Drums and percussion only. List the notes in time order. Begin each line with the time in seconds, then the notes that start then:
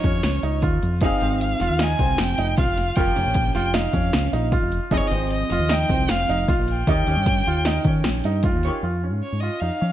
0.04 kick, closed hi-hat
0.23 snare, closed hi-hat
0.43 closed hi-hat
0.62 kick, closed hi-hat
0.83 closed hi-hat
1.01 kick, closed hi-hat
1.21 closed hi-hat
1.41 closed hi-hat
1.60 snare, closed hi-hat
1.79 snare, closed hi-hat
1.99 kick, closed hi-hat
2.18 snare, closed hi-hat
2.38 snare, closed hi-hat
2.58 kick, snare, closed hi-hat
2.78 snare, closed hi-hat
2.97 kick, closed hi-hat
3.16 closed hi-hat
3.34 kick, closed hi-hat
3.55 snare, closed hi-hat
3.74 snare, closed hi-hat
3.93 kick, closed hi-hat
4.13 snare, closed hi-hat
4.33 closed hi-hat
4.52 kick, closed hi-hat
4.72 closed hi-hat
4.91 kick, closed hi-hat
5.11 snare, closed hi-hat
5.30 closed hi-hat
5.50 snare, closed hi-hat
5.69 snare, closed hi-hat
5.90 kick, closed hi-hat
6.09 snare, closed hi-hat
6.29 snare, closed hi-hat
6.48 kick, snare, closed hi-hat
6.68 closed hi-hat
6.87 kick, closed hi-hat
7.07 closed hi-hat
7.26 kick, snare, closed hi-hat
7.46 closed hi-hat
7.65 snare, closed hi-hat
7.84 kick, closed hi-hat
8.04 snare, closed hi-hat
8.24 closed hi-hat
8.43 kick, closed hi-hat
8.63 closed hi-hat